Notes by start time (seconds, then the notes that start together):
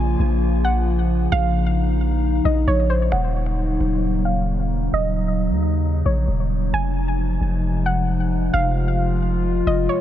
Already playing: A#1 C#3 F3 A#3 F4 G#5
0.19 A#1
0.65 F#5
1.32 A#1 D#4 F5
2.45 A#1 D#5
2.67 A#1 C#5
2.90 C5
3.12 D#1 C#3 F#3 A#3 D#4 F#5
3.80 D#1
4.25 F5
4.93 D#1 D#5
5.49 D#2
6.06 A#1 C#5
6.28 D#1
6.73 F1 C3 F3 G#3 G#5
7.41 F1
7.86 F#5
8.53 F1 F4 F5
9.67 F1 D#5
9.89 C#5